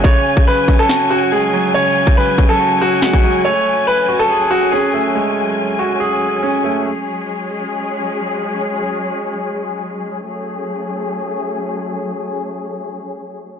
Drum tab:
SD |--------o-------|------------o---|----------------|----------------|
BD |o--o--o---------|---o--o------o--|----------------|----------------|

SD |----------------|----------------|----------------|----------------|
BD |----------------|----------------|----------------|----------------|